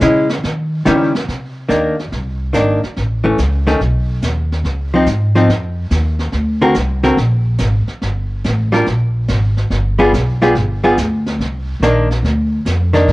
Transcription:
0.00 0.42 C#3 medium
0.00 0.27 G#3 medium
0.00 0.27 C#4 medium
0.00 0.27 E4 medium
0.00 snare medium
0.00 hi-hat pedal medium
0.29 snare soft
0.43 0.84 D#3 medium
0.43 brush sweep soft
0.43 snare soft
0.85 1.27 C#3 medium
0.85 1.11 D#3 medium
0.85 1.11 G3 medium
0.85 1.11 C#4 medium
0.85 1.12 E4 medium
0.85 snare medium
0.85 hi-hat pedal medium
1.15 snare medium
1.28 1.69 C3 medium
1.28 brush sweep soft
1.28 snare soft
1.69 2.11 D#2 medium
1.69 1.95 D#3 soft
1.69 1.95 A#3 soft
1.69 1.95 D4 soft
1.69 snare soft
1.69 hi-hat pedal soft
1.99 snare soft
2.12 2.53 C2 medium
2.12 brush sweep soft
2.12 snare soft
2.53 2.81 G#1 medium
2.53 2.79 D#3 soft
2.53 2.80 A#3 soft
2.53 2.80 D4 soft
2.53 snare soft
2.53 hi-hat pedal medium
2.83 muted upright bass stroke soft
2.83 snare soft
2.96 3.38 A1 medium
2.96 brush sweep soft
2.96 snare soft
3.24 3.37 E3 medium
3.24 3.37 A3 medium
3.24 3.37 C#4 medium
3.38 3.79 C#2 medium
3.38 snare soft
3.38 hi-hat pedal medium
3.67 3.79 D#3 soft
3.67 3.80 A3 soft
3.67 3.80 C#4 medium
3.67 snare soft
3.80 4.21 B1 medium
3.80 brush sweep soft
3.80 snare soft
4.22 4.63 D#2 medium
4.22 snare medium
4.22 hi-hat pedal soft
4.52 snare soft
4.64 5.05 C#2 medium
4.64 brush sweep soft
4.64 snare soft
4.94 5.06 F3 soft
4.94 5.07 C4 medium
4.94 5.07 D#4 medium
5.06 5.47 G#2 medium
5.06 snare soft
5.06 hi-hat pedal soft
5.36 5.48 F3 medium
5.36 5.48 C4 soft
5.36 5.49 D#4 medium
5.36 snare soft
5.48 5.89 F2 medium
5.48 brush sweep soft
5.48 snare soft
5.91 6.32 D#2 medium
5.91 snare medium
5.91 hi-hat pedal medium
6.19 snare soft
6.32 6.74 D2 medium
6.32 brush sweep soft
6.32 snare soft
6.62 6.74 D3 medium
6.62 6.74 C4 medium
6.62 6.75 F#4 medium
6.62 6.74 A#4 medium
6.74 7.16 C2 medium
6.74 snare soft
6.74 hi-hat pedal soft
7.03 7.16 D3 soft
7.03 7.16 C4 medium
7.03 7.16 F#4 medium
7.03 7.17 A#4 medium
7.03 snare soft
7.17 7.58 A#1 medium
7.17 brush sweep soft
7.17 snare soft
7.58 7.86 G#1 medium
7.58 snare medium
7.58 hi-hat pedal medium
7.87 muted upright bass stroke soft
7.87 snare soft
8.02 8.43 G1 medium
8.02 brush sweep soft
8.02 snare soft
8.44 8.86 A1 medium
8.44 snare soft
8.44 hi-hat pedal soft
8.72 8.85 G3 soft
8.72 8.85 D4 soft
8.72 8.85 F4 soft
8.72 8.86 A#4 soft
8.72 snare soft
8.86 9.27 A#1 medium
8.86 brush sweep soft
8.86 snare soft
9.28 9.70 G#1 medium
9.28 snare medium
9.28 hi-hat pedal soft
9.57 snare soft
9.70 10.11 G1 medium
9.70 brush sweep soft
9.70 snare soft
9.99 10.11 G3 medium
9.99 10.12 B3 medium
9.99 10.12 F4 medium
9.99 10.12 G#4 medium
10.13 10.54 B1 medium
10.13 snare soft
10.13 hi-hat pedal medium
10.41 10.54 G3 medium
10.41 10.54 B3 soft
10.41 10.54 F4 medium
10.41 10.55 G#4 medium
10.41 snare soft
10.55 10.96 G1 medium
10.55 brush sweep soft
10.55 snare soft
10.83 10.96 G3 soft
10.83 10.96 B3 medium
10.83 10.96 F4 medium
10.83 10.97 G#4 medium
10.97 11.38 D2 medium
10.97 snare medium
10.97 hi-hat pedal medium
11.26 snare soft
11.38 11.79 C2 medium
11.38 brush sweep soft
11.38 snare soft
11.80 12.21 A#1 medium
11.80 12.07 D#3 medium
11.80 12.08 A#3 medium
11.80 12.08 D4 medium
11.80 snare soft
11.80 hi-hat pedal soft
12.11 snare soft
12.23 12.64 D2 medium
12.23 brush sweep soft
12.23 snare soft
12.65 13.06 F2 medium
12.65 snare medium
12.65 hi-hat pedal medium
12.94 13.13 D#3 medium
12.94 13.13 A#3 medium
12.94 13.13 D4 medium
12.94 snare soft
13.08 13.13 G2 medium
13.08 brush sweep soft
13.08 snare soft

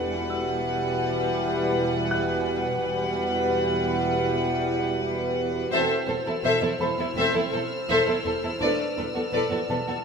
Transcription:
0.00 2.78 E1 medium
0.00 0.98 E2 medium
0.00 2.79 E2 medium
0.00 2.64 G3 medium
0.00 2.81 G3 soft
0.00 2.64 E4 medium
0.00 2.81 F#4 soft
0.00 2.78 B4 soft
0.00 2.79 B4 medium
0.00 2.78 F#5 soft
0.00 2.81 F#5 soft
0.00 5.31 F#5 soft
0.00 3.43 G#5 soft
0.00 0.97 F#6 soft
0.30 2.42 E6 soft
2.11 4.23 F#6 medium
2.81 5.67 E1 soft
2.81 5.68 E2 medium
2.81 5.67 G3 medium
2.81 5.68 G3 medium
2.81 5.67 E4 medium
2.81 5.67 F#4 soft
2.81 5.67 B4 soft
2.81 5.68 B4 medium
2.81 5.67 F#5 medium
2.81 5.67 F#5 soft
3.43 4.59 G5 soft
5.71 5.78 E1 medium
5.71 5.79 E2 medium
5.71 5.97 A3 medium
5.71 5.97 C4 soft
5.71 8.60 E4 soft
5.71 10.04 A4 soft
5.71 5.89 A4 medium
5.71 5.88 C5 medium
5.71 8.61 C5 soft
5.71 5.88 E5 medium
5.71 10.04 E6 soft
5.71 10.04 F6 soft
6.07 6.15 E1 soft
6.07 6.15 E2 soft
6.07 6.15 A4 soft
6.07 6.15 C5 soft
6.26 6.34 E2 soft
6.26 6.34 E4 soft
6.26 6.33 A4 soft
6.26 6.34 A4 soft
6.44 6.51 E1 medium
6.44 6.51 E2 medium
6.44 6.61 A4 soft
6.44 6.60 C5 soft
6.44 6.60 E5 medium
6.62 6.69 E2 soft
6.62 6.70 E4 soft
6.62 6.69 A4 soft
6.80 6.87 E1 soft
6.80 6.88 E2 soft
6.80 6.87 A4 soft
6.80 6.88 A4 soft
6.80 6.88 C5 medium
6.80 8.93 B5 medium
6.99 7.06 E2 soft
6.99 7.06 E4 soft
6.99 7.06 A4 soft
6.99 7.07 A4 soft
7.15 7.23 E1 medium
7.15 7.24 E2 medium
7.15 7.42 A3 medium
7.15 7.41 C4 medium
7.15 7.33 A4 medium
7.15 7.33 C5 medium
7.15 7.33 E5 medium
7.34 7.42 E2 soft
7.34 7.42 E4 medium
7.34 7.41 A4 medium
7.34 7.42 A4 soft
7.52 7.59 E1 soft
7.52 7.60 E2 soft
7.52 7.60 A4 soft
7.52 7.61 A4 soft
7.52 7.60 C5 soft
7.89 7.96 E1 medium
7.89 7.96 E2 medium
7.89 8.06 A4 medium
7.89 8.06 C5 medium
7.89 8.06 E5 medium
8.07 8.14 E2 soft
8.07 8.15 E4 soft
8.07 8.14 A4 soft
8.07 8.15 A4 soft
8.25 8.32 E1 soft
8.25 8.32 E2 soft
8.25 8.32 A4 soft
8.25 8.33 A4 medium
8.25 8.32 C5 soft
8.43 8.50 E2 medium
8.43 8.51 E4 soft
8.43 8.50 A4 soft
8.43 8.51 A4 soft
8.60 8.68 E1 medium
8.60 8.68 E2 medium
8.60 8.86 A3 medium
8.60 8.86 D4 medium
8.60 8.78 A4 medium
8.60 10.04 B4 soft
8.60 8.78 B4 medium
8.60 10.04 D5 soft
8.60 8.77 D5 medium
8.97 9.04 E1 soft
8.97 9.04 E2 soft
8.97 9.05 A4 soft
8.97 9.06 A4 soft
8.97 9.04 B4 soft
9.14 9.23 E2 soft
9.14 9.22 F#4 soft
9.14 9.23 A4 soft
9.14 9.24 A4 soft
9.32 9.41 E1 medium
9.32 9.40 E2 medium
9.32 9.51 A4 soft
9.32 9.49 B4 soft
9.32 9.50 D5 medium
9.51 9.59 E2 soft
9.51 9.58 F#4 soft
9.51 9.59 A4 soft
9.69 9.77 E1 soft
9.69 9.77 E2 soft
9.69 9.77 A4 soft
9.69 9.77 B4 soft
9.69 10.04 A5 soft
9.88 9.95 E2 soft
9.88 9.95 F#4 soft
9.88 9.95 A4 soft
9.88 9.96 A4 soft

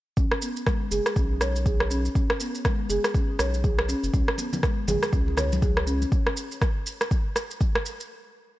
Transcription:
0.17 0.26 B1 loud
0.17 0.30 C#4 medium
0.17 kick loud
0.17 shaker soft
0.31 cross-stick medium
0.42 0.56 B3 medium
0.42 shaker medium
0.57 shaker soft
0.66 0.80 G#3 medium
0.66 kick loud
0.66 cross-stick medium
0.66 shaker soft
0.91 1.00 F#1 medium
0.91 0.99 G#4 loud
0.91 shaker medium
1.06 cross-stick medium
1.06 shaker medium
1.16 2.09 B1 loud
1.16 1.29 C#4 medium
1.16 kick loud
1.16 shaker soft
1.41 1.55 C#5 medium
1.41 cross-stick medium
1.41 shaker medium
1.56 shaker medium
1.66 1.80 G#4 medium
1.66 kick loud
1.66 shaker soft
1.80 cross-stick medium
1.90 1.98 C#4 medium
1.90 shaker medium
2.05 shaker soft
2.15 2.29 C#4 medium
2.15 kick loud
2.15 shaker soft
2.30 cross-stick medium
2.40 2.54 B3 medium
2.40 shaker medium
2.55 shaker medium
2.65 2.79 G#3 medium
2.65 kick loud
2.65 cross-stick medium
2.65 shaker soft
2.90 2.99 F#1 medium
2.90 2.98 G#4 loud
2.90 shaker medium
3.04 cross-stick medium
3.04 shaker soft
3.14 3.28 C#4 medium
3.14 kick loud
3.14 shaker soft
3.39 3.94 B1 medium
3.39 3.53 C#5 medium
3.39 cross-stick medium
3.39 shaker loud
3.54 shaker medium
3.64 3.78 G#4 medium
3.64 kick loud
3.64 shaker soft
3.79 cross-stick medium
3.89 3.97 C#4 loud
3.89 shaker medium
4.04 4.10 F#1 medium
4.04 shaker medium
4.14 4.22 C#2 loud
4.14 4.27 C#4 medium
4.14 kick loud
4.14 shaker soft
4.28 cross-stick medium
4.38 4.52 B3 medium
4.38 muted conga medium
4.38 shaker medium
4.53 high conga loud
4.53 low conga medium
4.53 shaker medium
4.63 4.77 G#3 medium
4.63 kick loud
4.63 cross-stick medium
4.63 shaker soft
4.88 4.97 G#1 medium
4.88 4.96 G#4 loud
4.88 muted conga soft
4.88 high conga loud
4.88 low conga loud
4.88 shaker medium
5.03 cross-stick medium
5.03 shaker medium
5.13 6.05 C#2 loud
5.13 5.26 C#4 medium
5.13 kick loud
5.13 shaker soft
5.28 muted conga soft
5.37 5.51 C#5 medium
5.37 cross-stick medium
5.37 low conga medium
5.37 shaker loud
5.52 high conga loud
5.52 shaker medium
5.62 5.76 G#4 medium
5.62 kick loud
5.62 muted conga soft
5.62 high conga loud
5.62 shaker soft
5.77 cross-stick medium
5.87 5.95 C#4 loud
5.87 shaker medium
6.02 muted conga medium
6.02 shaker medium
6.12 kick loud
6.12 shaker soft
6.27 cross-stick medium
6.37 shaker medium
6.52 shaker medium
6.62 kick loud
6.62 cross-stick medium
6.62 shaker soft
6.87 shaker medium
7.01 cross-stick medium
7.01 shaker medium
7.11 kick loud
7.11 shaker soft
7.36 cross-stick medium
7.36 shaker loud
7.51 shaker medium
7.61 kick loud
7.61 shaker soft
7.75 cross-stick loud
7.86 shaker loud
8.00 shaker medium

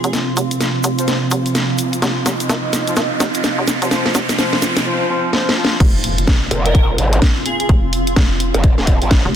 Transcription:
0.00 4.82 C4 medium
0.00 4.86 C4 medium
0.00 4.82 F4 medium
0.00 4.86 F4 medium
0.00 1.98 F5 medium
0.00 4.86 F5 medium
0.00 4.86 C6 medium
0.00 riser medium
0.04 0.35 F1 medium
0.04 0.10 G#4 medium
0.04 closed hi-hat medium
0.04 shaker soft
0.13 snare medium
0.13 closed hi-hat medium
0.13 shaker soft
0.37 0.59 F1 loud
0.37 open hi-hat loud
0.37 shaker medium
0.51 closed hi-hat medium
0.51 shaker soft
0.61 snare medium
0.61 closed hi-hat medium
0.61 shaker soft
0.84 1.30 F1 medium
0.84 open hi-hat loud
0.84 shaker medium
0.98 1.16 F3 medium
0.98 1.16 C4 medium
0.98 1.16 F4 medium
0.98 1.16 C5 medium
0.98 closed hi-hat medium
0.98 shaker medium
1.08 snare medium
1.08 closed hi-hat medium
1.08 shaker soft
1.31 1.54 F1 loud
1.31 open hi-hat loud
1.31 shaker medium
1.46 open hi-hat medium
1.46 shaker soft
1.55 snare medium
1.55 closed hi-hat medium
1.55 shaker soft
1.78 open hi-hat loud
1.78 shaker medium
1.93 closed hi-hat medium
1.93 shaker medium
2.02 2.24 F1 loud
2.02 4.83 D#5 medium
2.02 snare medium
2.02 closed hi-hat soft
2.02 shaker soft
2.26 2.48 F1 loud
2.26 snare medium
2.26 open hi-hat loud
2.26 shaker loud
2.40 closed hi-hat medium
2.40 shaker medium
2.49 2.72 G#1 loud
2.49 snare medium
2.49 closed hi-hat soft
2.49 shaker soft
2.73 snare medium
2.73 open hi-hat loud
2.73 shaker medium
2.87 2.95 F3 medium
2.87 2.95 C4 medium
2.87 2.95 F4 medium
2.87 2.95 C5 medium
2.87 closed hi-hat medium
2.87 shaker soft
2.96 3.19 G#1 medium
2.96 snare medium
2.96 closed hi-hat soft
2.96 shaker soft
3.20 3.56 F1 loud
3.20 snare medium
3.20 open hi-hat loud
3.20 shaker medium
3.34 closed hi-hat medium
3.34 shaker medium
3.44 snare medium
3.44 open hi-hat medium
3.44 shaker soft
3.58 3.80 F1 medium
3.68 snare medium
3.68 open hi-hat loud
3.68 shaker loud
3.82 4.13 F1 medium
3.82 3.90 F3 medium
3.82 3.90 C4 medium
3.82 3.90 F4 medium
3.82 3.90 C5 medium
3.82 closed hi-hat medium
3.82 shaker soft
3.91 4.11 F3 medium
3.91 4.11 C4 medium
3.91 4.11 F4 medium
3.91 4.11 C5 medium
3.91 snare medium
3.91 closed hi-hat soft
3.91 shaker soft
4.06 snare medium
4.15 4.37 F1 loud
4.15 snare medium
4.15 open hi-hat loud
4.15 shaker loud
4.29 snare medium
4.29 closed hi-hat medium
4.29 shaker medium
4.38 4.58 F3 medium
4.38 4.58 C4 medium
4.38 4.58 F4 medium
4.38 4.58 C5 medium
4.38 snare loud
4.38 closed hi-hat medium
4.38 shaker soft
4.53 snare medium
4.62 snare medium
4.62 open hi-hat loud
4.62 shaker medium
4.77 snare medium
4.77 closed hi-hat medium
4.77 shaker soft
4.86 5.05 F3 medium
4.86 5.05 C4 medium
4.86 5.05 F4 medium
4.86 5.05 C5 medium
5.09 5.29 F3 medium
5.09 5.29 C4 medium
5.09 5.29 F4 medium
5.09 5.29 C5 medium
5.33 5.53 F3 medium
5.33 5.53 C4 medium
5.33 5.53 F4 medium
5.33 5.53 C5 medium
5.33 snare medium
5.49 snare medium
5.57 5.76 F3 medium
5.57 5.76 C4 medium
5.57 5.76 F4 medium
5.57 5.76 C5 medium
5.65 snare loud
5.80 6.26 F1 loud
5.80 9.36 C4 medium
5.80 9.36 F4 medium
5.80 9.36 F5 medium
5.80 kick loud
5.80 closed hi-hat medium
5.80 crash loud
5.80 impact medium
5.95 9.36 F5 medium
6.03 9.36 F4 medium
6.03 9.36 C6 medium
6.03 open hi-hat loud
6.18 closed hi-hat medium
6.27 kick loud
6.27 snare loud
6.27 closed hi-hat medium
6.51 6.97 F1 loud
6.51 open hi-hat loud
6.66 6.84 A#4 medium
6.66 closed hi-hat medium
6.75 kick loud
6.75 closed hi-hat medium
6.98 7.20 G#1 loud
6.98 open hi-hat loud
7.13 closed hi-hat medium
7.22 kick loud
7.22 snare loud
7.22 open hi-hat medium
7.46 7.55 G#4 medium
7.46 open hi-hat loud
7.60 7.66 G#4 medium
7.60 closed hi-hat medium
7.69 8.15 F1 loud
7.69 kick loud
7.69 closed hi-hat medium
7.93 open hi-hat loud
8.07 closed hi-hat medium
8.16 8.52 F1 medium
8.16 kick loud
8.16 snare loud
8.16 closed hi-hat medium
8.40 open hi-hat loud
8.54 8.76 F1 loud
8.54 closed hi-hat medium
8.64 kick loud
8.64 closed hi-hat medium
8.78 8.99 D#1 loud
8.78 snare soft
8.87 kick medium
8.87 open hi-hat loud
9.02 9.23 G#1 medium
9.02 open hi-hat medium
9.11 kick loud
9.11 snare loud
9.11 closed hi-hat medium
9.25 9.36 F1 medium

